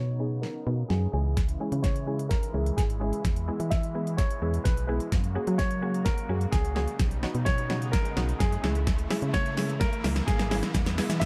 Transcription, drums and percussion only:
0.43 snare medium
0.90 snare medium
1.37 kick loud
1.37 snare medium
1.37 closed hi-hat medium
1.49 closed hi-hat soft
1.72 closed hi-hat medium
1.84 kick loud
1.84 snare medium
1.84 closed hi-hat medium
1.96 closed hi-hat soft
2.19 closed hi-hat medium
2.31 kick loud
2.31 snare medium
2.31 closed hi-hat medium
2.43 closed hi-hat soft
2.66 closed hi-hat soft
2.78 kick loud
2.78 snare medium
2.78 closed hi-hat medium
2.90 closed hi-hat soft
3.13 closed hi-hat medium
3.25 kick loud
3.25 snare medium
3.25 closed hi-hat medium
3.36 closed hi-hat soft
3.60 closed hi-hat medium
3.71 kick loud
3.71 snare medium
3.71 closed hi-hat medium
3.83 closed hi-hat soft
4.07 closed hi-hat medium
4.18 kick loud
4.18 snare medium
4.18 closed hi-hat medium
4.31 closed hi-hat medium
4.54 closed hi-hat medium
4.65 kick loud
4.65 snare medium
4.65 closed hi-hat medium
4.77 closed hi-hat soft
5.00 closed hi-hat medium
5.12 kick loud
5.12 snare medium
5.12 closed hi-hat medium
5.24 closed hi-hat soft
5.47 closed hi-hat medium
5.59 kick loud
5.59 snare medium
5.59 closed hi-hat medium
5.71 closed hi-hat soft
5.94 closed hi-hat medium
6.06 kick loud
6.06 snare medium
6.06 closed hi-hat medium
6.18 closed hi-hat medium
6.41 closed hi-hat medium
6.52 kick loud
6.52 snare medium
6.52 closed hi-hat medium
6.65 closed hi-hat soft
6.76 snare medium
6.88 closed hi-hat medium
6.99 kick loud
6.99 snare medium
6.99 closed hi-hat medium
7.11 closed hi-hat soft
7.23 snare medium
7.35 closed hi-hat medium
7.46 kick loud
7.46 snare medium
7.46 closed hi-hat medium
7.58 closed hi-hat soft
7.70 snare medium
7.82 closed hi-hat medium
7.93 kick loud
7.93 snare medium
7.93 closed hi-hat medium
8.05 closed hi-hat medium
8.17 snare loud
8.29 closed hi-hat medium
8.40 kick loud
8.40 snare medium
8.40 closed hi-hat medium
8.52 closed hi-hat soft
8.64 snare medium
8.75 closed hi-hat medium
8.87 kick loud
8.87 snare loud
8.87 closed hi-hat medium
8.98 closed hi-hat soft
9.10 snare loud
9.10 open hi-hat medium
9.22 closed hi-hat medium
9.34 kick loud
9.34 snare medium
9.34 closed hi-hat medium
9.46 closed hi-hat soft
9.57 snare loud
9.57 open hi-hat medium
9.69 closed hi-hat medium
9.81 kick loud
9.81 snare loud
9.81 closed hi-hat medium
9.93 closed hi-hat medium
10.04 snare loud
10.04 open hi-hat medium
10.16 snare medium
10.16 closed hi-hat medium
10.28 kick loud
10.28 snare loud
10.28 closed hi-hat medium
10.39 snare loud
10.39 closed hi-hat soft
10.51 snare loud
10.51 open hi-hat medium
10.63 snare loud
10.63 closed hi-hat medium
10.74 kick loud
10.74 snare loud
10.74 closed hi-hat medium
10.74 shaker medium
10.86 snare loud
10.86 closed hi-hat soft
10.86 shaker soft
10.98 snare loud
10.98 open hi-hat medium
10.98 shaker soft
11.10 snare loud
11.10 closed hi-hat medium
11.10 shaker medium
11.21 kick loud
11.21 snare loud
11.21 closed hi-hat medium
11.21 shaker medium

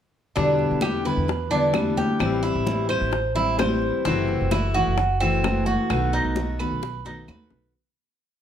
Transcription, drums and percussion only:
0.37 high bongo medium
0.37 high conga soft
0.59 high bongo soft
0.59 high conga soft
0.81 high bongo medium
0.81 high conga medium
0.81 claves medium
1.06 high bongo soft
1.29 high bongo medium
1.29 high conga soft
1.51 high bongo soft
1.51 high conga soft
1.74 high bongo medium
1.74 low bongo medium
1.74 high conga medium
1.74 claves medium
1.98 high conga medium
2.20 high bongo medium
2.20 high conga soft
2.20 claves medium
2.44 high bongo soft
2.44 high conga soft
2.67 high bongo medium
2.67 high conga medium
2.90 high bongo soft
2.90 high conga soft
2.90 claves medium
3.13 high bongo medium
3.13 high conga soft
3.36 high bongo soft
3.36 high conga soft
3.59 high bongo medium
3.59 low bongo medium
3.59 high conga medium
3.59 claves medium
3.82 high conga soft
4.05 high bongo medium
4.05 high conga soft
4.28 high bongo soft
4.28 high conga soft
4.51 high bongo medium
4.51 high conga medium
4.51 claves medium
4.75 high bongo soft
4.98 high bongo medium
4.98 high conga soft
5.21 high bongo soft
5.21 high conga soft
5.44 high bongo medium
5.44 low bongo medium
5.44 high conga medium
5.44 claves medium
5.67 high conga medium
5.90 high bongo medium
5.90 high conga soft
5.90 claves medium
6.13 high bongo soft
6.13 high conga soft
6.36 high bongo medium
6.36 high conga medium
6.59 high bongo soft
6.59 high conga soft
6.59 claves medium
6.82 high bongo medium
6.82 high conga soft
7.05 high conga soft
7.28 low bongo medium
7.28 high conga medium
7.28 claves medium
7.50 low bongo medium
7.50 high conga soft

